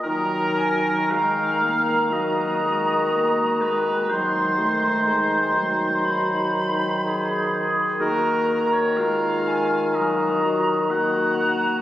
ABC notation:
X:1
M:4/4
L:1/16
Q:1/4=61
K:Ebm
V:1 name="Flute"
b2 a2 b12 | =c'4 c'4 _c'6 z2 | b4 b2 a2 b4 b4 |]
V:2 name="Oboe"
B4 f4 e6 c2 | =c12- c3 z | B3 d f4 e4 g4 |]
V:3 name="Clarinet"
E8 G8 | E8 E2 z2 A4 | G4 F4 G4 G4 |]
V:4 name="French horn" clef=bass
G,4 A,2 B,2 G,2 A,2 B,2 A,2 | G,2 =A,2 _A,2 G,8 z2 | B,4 A,4 G,2 G,2 B,4 |]
V:5 name="Bassoon" clef=bass
E,16 | E,12- E,2 z2 | E,16 |]